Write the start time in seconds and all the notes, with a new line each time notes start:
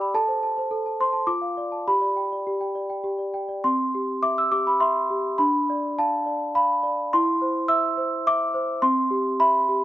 Already playing: G4 D5 G5 D6 E6 G6
0.00 B5
0.14 A4 A5
0.28 C5
0.43 A5
0.58 C5
0.71 A4
0.86 A5
1.00 C5 C6
1.13 A5
1.27 F4 D6
1.41 F5
1.57 D5
1.72 A5
1.88 G4 B5
2.02 D5
2.16 G5
2.32 D5
2.47 G4
2.61 G5
2.75 D5
2.89 G5
3.04 G4
3.18 D5
3.34 G5
3.49 D5
3.64 C4 C6
3.95 G4
4.22 E5 D6
4.38 E6
4.52 G4 D6
4.67 B5
4.80 E5 C6
5.10 G4
5.38 D4 B5
5.70 D5
5.99 F5 A5
6.26 D5
6.55 F5 B5
6.83 D5
7.13 E4 C6
7.42 C5
7.68 E5 E6
7.97 C5
8.27 E5 D6
8.54 C5
8.82 C4 C6
9.11 G4
9.40 E5 B5
9.69 G4